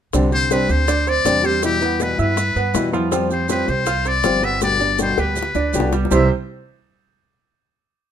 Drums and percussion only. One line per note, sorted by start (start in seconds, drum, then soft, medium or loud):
0.13 high bongo medium
0.13 maracas medium
0.32 maracas soft
0.51 high bongo medium
0.51 maracas medium
0.69 high bongo soft
0.69 maracas soft
0.88 high bongo medium
0.88 maracas medium
1.07 high bongo soft
1.07 maracas soft
1.25 high bongo medium
1.25 low bongo medium
1.25 maracas medium
1.44 high bongo soft
1.44 maracas soft
1.63 high bongo medium
1.63 maracas medium
1.81 high bongo soft
1.81 maracas soft
2.00 high bongo medium
2.00 maracas medium
2.19 maracas soft
2.37 high bongo medium
2.37 maracas medium
2.56 high bongo soft
2.56 maracas soft
2.75 high bongo medium
2.75 low bongo medium
2.75 maracas medium
2.93 high bongo soft
2.93 maracas soft
3.12 high bongo medium
3.12 maracas medium
3.31 maracas soft
3.49 high bongo medium
3.49 maracas medium
3.68 high bongo soft
3.68 maracas soft
3.86 high bongo medium
3.86 maracas medium
4.05 high bongo soft
4.05 maracas soft
4.24 high bongo medium
4.24 low bongo medium
4.24 maracas medium
4.43 high bongo soft
4.43 maracas soft
4.61 high bongo medium
4.61 maracas medium
4.80 high bongo soft
4.80 maracas soft
4.99 high bongo medium
4.99 maracas medium
5.18 high bongo medium
5.18 maracas soft
5.36 maracas medium
5.42 low bongo medium
5.55 low bongo medium
5.55 maracas soft
5.74 maracas medium
5.80 low bongo loud
5.93 low bongo medium
5.93 maracas soft
6.05 low bongo medium
6.11 low bongo medium
6.11 maracas medium